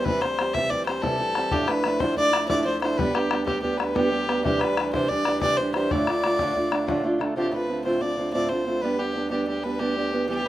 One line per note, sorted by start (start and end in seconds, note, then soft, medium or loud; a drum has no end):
0.00 1.52 D2 medium
0.04 0.22 C3 medium
0.04 0.21 E3 medium
0.04 0.22 G3 medium
0.04 0.23 C4 medium
0.04 0.23 G4 medium
0.04 0.23 B4 loud
0.04 bodhran medium
0.21 0.37 E3 medium
0.21 0.38 G3 medium
0.21 0.39 C4 medium
0.21 0.55 C5 loud
0.21 bodhran medium
0.26 0.40 G4 medium
0.38 0.54 E3 soft
0.38 0.54 G3 medium
0.38 0.55 C4 medium
0.38 0.56 G4 medium
0.38 bodhran medium
0.53 0.71 C3 medium
0.53 0.69 E3 medium
0.53 0.70 G3 medium
0.53 0.71 C4 medium
0.53 0.72 G4 medium
0.53 0.71 E5 loud
0.53 bodhran medium
0.70 0.85 E3 medium
0.70 0.86 G3 medium
0.70 0.87 C4 medium
0.70 0.88 G4 medium
0.70 0.85 D5 medium
0.70 bodhran soft
0.86 1.02 E3 medium
0.86 1.02 G3 medium
0.86 1.03 C4 medium
0.86 1.03 G4 medium
0.86 1.04 C5 medium
0.86 bodhran medium
1.02 1.19 C3 medium
1.02 1.17 E3 medium
1.02 1.17 G3 medium
1.02 1.19 C4 medium
1.02 1.20 G4 medium
1.02 1.54 A4 loud
1.02 bodhran medium
1.18 1.34 E3 medium
1.18 1.35 G3 medium
1.18 1.36 C4 medium
1.18 1.37 G4 medium
1.35 1.52 E3 medium
1.35 1.52 G3 medium
1.35 1.53 C4 medium
1.35 1.53 G4 medium
1.35 bodhran medium
1.51 1.68 D2 medium
1.51 7.37 D2 medium
1.51 1.68 A2 medium
1.51 1.66 F3 medium
1.51 1.67 A3 medium
1.51 1.68 D4 medium
1.51 1.69 E4 medium
1.51 1.69 G4 medium
1.51 bodhran medium
1.59 bodhran soft
1.67 1.83 F3 medium
1.67 1.84 A3 medium
1.67 1.85 D4 medium
1.67 1.86 E4 medium
1.67 2.02 B4 medium
1.67 bodhran medium
1.84 2.00 F3 medium
1.84 2.00 A3 medium
1.84 2.00 D4 medium
1.84 2.01 E4 medium
1.84 bodhran medium
2.00 2.16 D2 medium
2.00 2.17 A2 medium
2.00 2.14 F3 medium
2.00 2.15 A3 medium
2.00 2.16 D4 medium
2.00 2.17 E4 medium
2.00 2.17 C5 medium
2.00 bodhran medium
2.15 2.30 F3 medium
2.15 2.32 A3 medium
2.15 2.33 D4 medium
2.15 2.34 E4 medium
2.15 2.47 D5 loud
2.15 bodhran soft
2.32 2.48 F3 medium
2.32 2.49 A3 medium
2.32 2.49 D4 medium
2.32 2.49 E4 medium
2.32 bodhran medium
2.48 2.65 D2 medium
2.48 2.65 A2 medium
2.48 2.64 F3 medium
2.48 2.65 A3 medium
2.48 2.66 D4 medium
2.48 2.66 E4 medium
2.48 2.63 D5 medium
2.48 bodhran medium
2.63 2.80 F3 medium
2.63 2.81 A3 medium
2.63 2.81 C5 medium
2.63 2.67 D5 medium
2.67 2.83 D4 medium
2.67 2.83 E4 medium
2.81 2.97 F3 medium
2.81 2.98 A3 medium
2.81 2.99 D4 medium
2.81 2.99 E4 medium
2.81 2.99 C5 medium
2.81 bodhran medium
2.97 3.12 G3 medium
2.97 3.14 B3 medium
2.97 3.15 D4 medium
2.97 3.15 G4 medium
2.97 3.17 B4 medium
2.97 bodhran medium
3.07 bodhran soft
3.14 3.29 G3 medium
3.14 3.31 B3 medium
3.14 3.31 D4 medium
3.14 3.46 G4 medium
3.14 3.32 G4 medium
3.14 bodhran medium
3.31 3.44 G3 medium
3.31 3.45 B3 medium
3.31 3.46 D4 medium
3.31 3.47 G4 medium
3.31 bodhran medium
3.45 3.60 G3 medium
3.45 3.62 B3 medium
3.45 3.62 D4 medium
3.45 3.62 G4 medium
3.45 3.63 G4 medium
3.45 bodhran medium
3.61 3.76 G3 medium
3.61 3.78 B3 medium
3.61 3.79 D4 medium
3.61 3.79 G4 medium
3.61 3.80 G4 medium
3.61 bodhran soft
3.77 3.94 G3 medium
3.77 3.94 B3 medium
3.77 3.95 D4 medium
3.77 3.96 G4 medium
3.77 3.97 B4 medium
3.77 bodhran medium
3.95 4.09 G3 medium
3.95 4.10 B3 medium
3.95 4.12 D4 medium
3.95 4.44 G4 medium
3.95 4.13 G4 medium
3.95 bodhran medium
4.10 4.26 G3 medium
4.10 4.27 B3 medium
4.10 4.28 D4 medium
4.10 4.29 G4 medium
4.27 4.44 G3 medium
4.27 4.45 B3 medium
4.27 4.45 D4 medium
4.27 4.45 G4 medium
4.27 bodhran medium
4.44 4.60 C3 medium
4.44 4.59 E3 medium
4.44 4.61 G3 medium
4.44 4.62 D4 medium
4.44 4.61 G4 medium
4.44 4.62 G4 medium
4.44 bodhran medium
4.53 bodhran soft
4.59 4.76 E3 medium
4.59 4.77 G3 medium
4.59 4.78 D4 medium
4.59 4.93 B4 medium
4.59 bodhran medium
4.64 4.79 G4 medium
4.77 4.92 E3 medium
4.77 4.93 G3 medium
4.77 4.94 D4 medium
4.77 4.94 G4 medium
4.77 bodhran medium
4.93 5.09 C3 medium
4.93 5.08 E3 medium
4.93 5.09 G3 medium
4.93 5.10 D4 medium
4.93 5.11 G4 medium
4.93 5.10 C5 medium
4.93 bodhran medium
5.09 5.24 E3 medium
5.09 5.25 G3 medium
5.09 5.26 D4 medium
5.09 5.26 G4 medium
5.09 5.41 D5 medium
5.09 bodhran soft
5.25 5.41 E3 medium
5.25 5.41 G3 medium
5.25 5.42 D4 medium
5.25 5.42 G4 medium
5.25 bodhran medium
5.41 5.58 C3 medium
5.41 5.57 E3 medium
5.41 5.58 G3 medium
5.41 5.59 D4 medium
5.41 5.59 G4 medium
5.41 5.58 D5 loud
5.41 bodhran medium
5.57 5.72 E3 medium
5.57 5.74 G3 medium
5.57 5.75 D4 medium
5.57 5.74 C5 medium
5.61 5.75 G4 medium
5.73 5.90 E3 medium
5.73 5.91 G3 medium
5.73 5.91 D4 medium
5.73 5.92 G4 medium
5.73 5.92 C5 medium
5.73 bodhran medium
5.90 6.07 D2 medium
5.90 6.07 A2 medium
5.90 6.05 D3 medium
5.90 6.07 A3 medium
5.90 6.08 D4 medium
5.90 6.08 F4 medium
5.90 7.05 D5 medium
5.90 bodhran medium
5.99 bodhran soft
6.06 6.22 D3 medium
6.06 6.23 A3 medium
6.06 6.24 D4 medium
6.06 6.25 F4 medium
6.06 bodhran medium
6.23 6.39 D3 medium
6.23 6.40 A3 medium
6.23 6.40 D4 medium
6.23 6.41 F4 medium
6.23 bodhran medium
6.39 6.56 D2 medium
6.39 6.56 A2 medium
6.39 6.54 D3 medium
6.39 6.55 A3 medium
6.39 6.56 D4 medium
6.39 6.57 F4 medium
6.39 bodhran medium
6.55 6.69 D3 medium
6.55 6.70 A3 medium
6.55 6.71 D4 medium
6.55 6.73 F4 medium
6.55 bodhran soft
6.70 6.86 D3 medium
6.70 6.87 A3 medium
6.70 6.88 D4 medium
6.70 6.88 F4 medium
6.70 bodhran medium
6.87 7.04 D2 medium
6.87 7.04 A2 medium
6.87 7.02 D3 medium
6.87 7.03 A3 medium
6.87 7.04 D4 medium
6.87 7.05 F4 medium
6.87 bodhran medium
7.04 7.18 D3 medium
7.04 7.19 A3 medium
7.04 7.20 D4 medium
7.04 7.21 F4 medium
7.19 7.35 D3 medium
7.19 7.36 A3 medium
7.19 7.37 D4 medium
7.19 7.37 F4 medium
7.19 bodhran soft
7.36 7.53 D2 medium
7.36 10.48 D2 medium
7.36 7.53 A2 medium
7.36 7.50 D3 medium
7.36 7.52 A3 medium
7.36 7.52 C4 medium
7.36 7.54 F4 medium
7.36 7.53 G4 medium
7.51 7.67 D3 medium
7.51 7.69 A3 medium
7.51 7.68 C4 medium
7.51 7.70 F4 medium
7.51 7.84 B4 medium
7.68 7.84 D3 soft
7.68 7.85 A3 medium
7.68 7.85 C4 soft
7.68 7.85 F4 medium
7.84 8.01 D2 medium
7.84 8.02 A2 medium
7.84 7.99 D3 medium
7.84 8.01 A3 medium
7.84 8.00 C4 medium
7.84 8.03 F4 medium
7.84 8.03 C5 medium
8.01 8.16 D3 soft
8.01 8.18 A3 soft
8.01 8.17 C4 medium
8.01 8.19 F4 medium
8.01 8.33 D5 medium
8.17 8.34 D3 medium
8.17 8.34 A3 medium
8.17 8.33 C4 medium
8.17 8.34 F4 medium
8.34 8.50 D2 medium
8.34 8.51 A2 medium
8.34 8.48 D3 medium
8.34 8.51 A3 medium
8.34 8.49 C4 medium
8.34 8.51 F4 medium
8.34 8.51 D5 medium
8.49 8.64 D3 medium
8.49 8.66 A3 medium
8.49 8.65 C4 medium
8.49 8.68 F4 medium
8.49 8.83 C5 medium
8.65 8.82 D3 medium
8.65 8.83 A3 medium
8.65 8.83 C4 medium
8.69 8.84 F4 medium
8.81 8.97 G3 medium
8.81 8.98 B3 medium
8.81 8.99 D4 medium
8.81 9.00 G4 medium
8.81 9.00 B4 medium
8.98 9.13 G3 medium
8.98 9.14 B3 medium
8.98 9.16 D4 medium
8.98 9.30 G4 medium
8.98 9.17 G4 medium
9.14 9.29 G3 medium
9.14 9.30 B3 medium
9.14 9.31 D4 medium
9.14 9.31 G4 medium
9.30 9.46 G3 medium
9.30 9.47 B3 medium
9.30 9.48 D4 medium
9.30 9.47 G4 medium
9.30 9.49 G4 medium
9.47 9.62 G3 soft
9.47 9.63 B3 soft
9.47 9.64 D4 medium
9.47 9.65 G4 medium
9.63 9.78 G3 medium
9.63 9.79 B3 medium
9.63 9.80 D4 medium
9.63 9.81 G4 medium
9.63 9.81 B4 medium
9.79 9.95 G3 medium
9.79 9.96 B3 medium
9.79 9.97 D4 medium
9.79 10.29 G4 medium
9.79 9.98 G4 medium
9.96 10.10 G3 soft
9.96 10.12 B3 medium
9.96 10.13 D4 medium
9.96 10.14 G4 medium
10.11 10.28 G3 medium
10.11 10.29 B3 medium
10.11 10.29 D4 medium
10.11 10.29 G4 medium
10.28 10.43 E3 medium
10.28 10.44 G3 medium
10.28 10.45 B3 medium
10.28 10.47 G4 medium
10.28 10.46 G4 medium
10.44 10.48 E3 medium
10.44 10.48 G3 medium